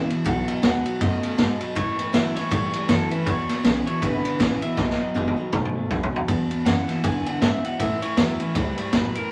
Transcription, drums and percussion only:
0.10 ride medium
0.25 kick loud
0.25 ride medium
0.48 ride medium
0.63 snare loud
0.63 ride medium
0.86 ride medium
1.01 kick loud
1.01 snare soft
1.01 ride medium
1.23 ride medium
1.38 kick medium
1.38 snare loud
1.38 ride medium
1.61 ride medium
1.76 kick loud
1.76 ride medium
1.99 ride medium
2.14 snare loud
2.14 ride medium
2.36 snare soft
2.36 ride medium
2.51 kick loud
2.51 ride medium
2.73 ride medium
2.89 kick medium
2.89 snare loud
2.89 ride loud
3.11 ride medium
3.27 kick loud
3.27 ride medium
3.49 snare soft
3.49 ride medium
3.64 snare loud
3.64 ride medium
3.87 ride medium
4.02 kick loud
4.02 ride medium
4.25 ride medium
4.40 kick medium
4.40 snare loud
4.40 ride medium
4.62 ride medium
4.77 kick loud
4.77 snare medium
4.90 snare medium
5.15 high tom medium
5.28 high tom medium
5.53 kick loud
5.53 mid tom medium
5.65 mid tom medium
5.91 kick medium
5.91 floor tom medium
6.03 floor tom loud
6.16 floor tom loud
6.28 kick loud
6.28 ride medium
6.51 ride medium
6.66 snare loud
6.66 ride medium
6.89 snare soft
6.89 ride medium
7.04 kick loud
7.04 ride medium
7.26 ride medium
7.42 kick medium
7.42 snare loud
7.42 ride medium
7.64 ride medium
7.80 kick loud
7.80 ride medium
8.02 ride medium
8.17 snare loud
8.17 ride medium
8.40 ride medium
8.55 kick loud
8.55 snare soft
8.55 ride medium
8.78 ride medium
8.93 kick medium
8.93 snare loud
8.93 ride medium
9.15 ride medium

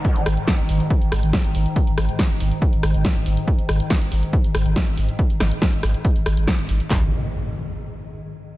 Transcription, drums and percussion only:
0.05 kick loud
0.05 closed hi-hat medium
0.16 closed hi-hat soft
0.26 cross-stick loud
0.26 open hi-hat loud
0.37 closed hi-hat soft
0.48 kick loud
0.48 snare loud
0.48 closed hi-hat medium
0.59 closed hi-hat medium
0.69 open hi-hat loud
0.80 closed hi-hat medium
0.90 kick loud
0.90 closed hi-hat medium
1.02 closed hi-hat soft
1.12 cross-stick loud
1.12 open hi-hat loud
1.23 closed hi-hat medium
1.33 kick loud
1.33 snare loud
1.33 closed hi-hat medium
1.44 closed hi-hat medium
1.55 open hi-hat loud
1.66 closed hi-hat soft
1.76 kick loud
1.76 closed hi-hat medium
1.87 closed hi-hat medium
1.98 cross-stick medium
1.98 open hi-hat loud
2.09 closed hi-hat soft
2.19 kick loud
2.19 snare loud
2.19 closed hi-hat medium
2.30 closed hi-hat medium
2.40 open hi-hat loud
2.52 closed hi-hat soft
2.62 kick loud
2.62 closed hi-hat medium
2.73 closed hi-hat soft
2.83 cross-stick medium
2.83 open hi-hat loud
2.94 closed hi-hat soft
3.05 kick loud
3.05 snare loud
3.05 closed hi-hat medium
3.16 closed hi-hat medium
3.26 open hi-hat loud
3.37 closed hi-hat soft
3.48 kick loud
3.48 closed hi-hat medium
3.59 closed hi-hat medium
3.69 cross-stick medium
3.69 open hi-hat loud
3.80 closed hi-hat medium
3.90 kick loud
3.90 snare loud
3.90 closed hi-hat medium
4.01 closed hi-hat medium
4.12 open hi-hat loud
4.23 closed hi-hat medium
4.33 kick loud
4.33 closed hi-hat medium
4.44 closed hi-hat soft
4.55 cross-stick medium
4.55 open hi-hat loud
4.66 closed hi-hat medium
4.76 kick loud
4.76 snare loud
4.76 closed hi-hat medium
4.87 closed hi-hat medium
4.97 open hi-hat loud
5.09 closed hi-hat medium
5.19 kick loud
5.19 closed hi-hat medium
5.30 closed hi-hat medium
5.40 cross-stick medium
5.40 snare medium
5.40 open hi-hat loud
5.51 closed hi-hat medium
5.62 kick loud
5.62 snare loud
5.62 closed hi-hat medium
5.73 closed hi-hat medium
5.83 cross-stick medium
5.83 open hi-hat loud
5.94 closed hi-hat medium
6.05 kick loud
6.05 closed hi-hat medium
6.16 closed hi-hat soft
6.26 cross-stick medium
6.26 open hi-hat loud
6.37 closed hi-hat medium
6.48 kick loud
6.48 cross-stick medium
6.48 snare loud
6.48 closed hi-hat medium
6.59 closed hi-hat medium
6.69 open hi-hat loud
6.80 closed hi-hat medium
6.90 kick loud
6.90 snare loud
6.90 clap medium

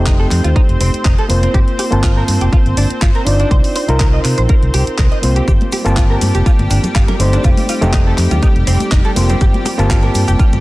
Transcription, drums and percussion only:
0.06 kick loud
0.06 clap loud
0.06 closed hi-hat medium
0.31 clap soft
0.31 open hi-hat loud
0.44 closed hi-hat soft
0.56 kick loud
0.56 closed hi-hat medium
0.69 closed hi-hat soft
0.81 open hi-hat loud
0.94 closed hi-hat soft
1.05 kick loud
1.05 clap loud
1.05 closed hi-hat medium
1.18 closed hi-hat soft
1.30 open hi-hat loud
1.43 closed hi-hat soft
1.54 kick loud
1.54 closed hi-hat medium
1.68 closed hi-hat soft
1.79 open hi-hat loud
1.92 closed hi-hat soft
2.03 kick loud
2.03 clap loud
2.03 closed hi-hat medium
2.28 open hi-hat loud
2.41 closed hi-hat soft
2.53 kick loud
2.53 closed hi-hat medium
2.66 closed hi-hat soft
2.77 open hi-hat loud
2.90 closed hi-hat soft
3.02 kick loud
3.02 clap loud
3.02 closed hi-hat medium
3.15 closed hi-hat soft
3.27 open hi-hat loud
3.40 closed hi-hat soft
3.51 kick loud
3.51 closed hi-hat medium
3.64 open hi-hat medium
3.76 open hi-hat loud
3.89 closed hi-hat soft
4.00 kick loud
4.00 clap loud
4.00 closed hi-hat medium
4.25 clap soft
4.25 open hi-hat loud
4.38 closed hi-hat soft
4.49 kick loud
4.49 closed hi-hat medium
4.63 closed hi-hat soft
4.74 open hi-hat loud
4.87 closed hi-hat soft
4.98 kick loud
4.98 clap loud
4.98 closed hi-hat medium
5.12 closed hi-hat soft
5.23 open hi-hat loud
5.36 closed hi-hat soft
5.48 kick loud
5.48 closed hi-hat medium
5.48 shaker soft
5.61 closed hi-hat soft
5.61 high conga medium
5.72 open hi-hat loud
5.72 muted conga medium
5.72 shaker medium
5.86 closed hi-hat soft
5.86 shaker medium
5.97 kick loud
5.97 clap loud
5.97 closed hi-hat medium
5.97 shaker soft
6.21 open hi-hat loud
6.21 muted conga medium
6.21 shaker medium
6.35 closed hi-hat soft
6.35 shaker soft
6.46 kick loud
6.46 closed hi-hat medium
6.46 shaker soft
6.59 closed hi-hat soft
6.59 muted conga soft
6.70 open hi-hat loud
6.70 shaker medium
6.83 closed hi-hat soft
6.83 low conga medium
6.83 shaker soft
6.95 kick loud
6.95 clap loud
6.95 closed hi-hat medium
6.95 shaker soft
7.08 closed hi-hat soft
7.08 muted conga medium
7.08 low conga medium
7.20 open hi-hat loud
7.20 shaker medium
7.33 closed hi-hat soft
7.33 shaker medium
7.44 kick loud
7.44 closed hi-hat medium
7.44 muted conga medium
7.44 shaker soft
7.57 open hi-hat medium
7.57 high conga medium
7.69 open hi-hat medium
7.69 shaker medium
7.82 closed hi-hat soft
7.82 low conga medium
7.82 shaker medium
7.93 kick loud
7.93 clap loud
7.93 closed hi-hat medium
7.93 muted conga medium
7.93 shaker soft
8.18 clap soft
8.18 open hi-hat loud
8.18 shaker medium
8.31 closed hi-hat soft
8.31 muted conga soft
8.31 low conga medium
8.31 shaker medium
8.43 kick loud
8.43 closed hi-hat medium
8.43 shaker soft
8.56 closed hi-hat soft
8.67 open hi-hat loud
8.67 shaker medium
8.80 closed hi-hat soft
8.80 muted conga medium
8.80 shaker soft
8.91 kick loud
8.91 clap loud
8.91 closed hi-hat medium
8.91 shaker soft
9.05 closed hi-hat soft
9.16 open hi-hat loud
9.16 muted conga soft
9.16 shaker medium
9.29 closed hi-hat soft
9.29 low conga medium
9.29 shaker soft
9.41 kick loud
9.41 closed hi-hat medium
9.41 shaker soft
9.54 closed hi-hat soft
9.54 high conga medium
9.66 open hi-hat loud
9.66 muted conga medium
9.66 shaker loud
9.79 closed hi-hat medium
9.79 shaker medium
9.90 kick loud
9.90 clap loud
9.90 closed hi-hat medium
9.90 shaker soft
10.03 muted conga soft
10.15 open hi-hat loud
10.15 shaker loud
10.28 closed hi-hat medium
10.28 shaker medium
10.39 kick loud
10.39 closed hi-hat medium
10.39 shaker soft
10.53 closed hi-hat soft
10.53 muted conga medium

